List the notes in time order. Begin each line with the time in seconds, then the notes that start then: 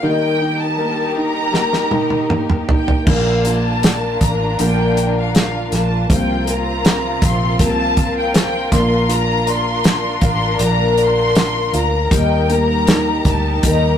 0.01 D#3 G3 A#3 D#4 G4 A#4 G5
0.41 D#4
0.60 A5
0.76 G3 A#3 D#4 A#4
1.17 D#4 A#5
1.50 G3 A#3 G4, snare
1.55 D#4 A#4
1.73 snare
1.91 D#4, high tom
2.10 high tom
2.30 A#3, mid tom
2.50 mid tom
2.69 D#4 G5, floor tom
2.88 floor tom
3.06 A#1 A#2 D3 F3 A#3 D4 F4 A#4 F5, kick, crash
3.44 F3 A#3 D4 F4 A#4 A5, closed hi-hat
3.83 D5, snare, closed hi-hat
4.21 A1 A#5, kick, closed hi-hat
4.58 A#1 A#2 D3 F3 A#3 D4 A#4 G5, closed hi-hat
4.97 closed hi-hat
5.18 F5
5.35 F4 F5, snare, closed hi-hat
5.71 A#1 F3 A#3 D4 A#4 A5, snare, closed hi-hat
6.09 C2 C3 F3 A#3 C4 F4 A#4 G5, kick, closed hi-hat
6.47 A#3 F4 A#4 A#5, closed hi-hat
6.85 C4, snare, closed hi-hat
7.22 A#1 C6, kick, closed hi-hat
7.58 C2 C3 F3 A#3 F4 A#4, kick, closed hi-hat
7.63 A5
7.97 kick, closed hi-hat
8.19 G5
8.33 C4 G5, snare, closed hi-hat
8.70 A#1 D3 F3 A#3 D4 A#4 C6, kick, snare, closed hi-hat
9.08 F4 A#5, closed hi-hat
9.47 D5 C6, closed hi-hat
9.84 snare, closed hi-hat
10.21 A1 F5, kick, closed hi-hat
10.26 C6
10.58 A#1 A#2 D3 F3 A#3 D4, closed hi-hat
10.63 A#4 A#5
10.98 D5, closed hi-hat
11.02 C6
11.35 snare, closed hi-hat
11.73 D2 F4, closed hi-hat
11.77 A#5
12.11 D#2 D#3 G3 A#3 D#4 G4 A#4 G5, kick, closed hi-hat
12.49 A#3 D#4 A#4 A#5, closed hi-hat
12.87 D#4, snare, closed hi-hat
13.25 D2 A5, kick, closed hi-hat
13.62 D#2 D#3 G3 A#3 D#4 A#4, kick, closed hi-hat
13.67 A#4 A#5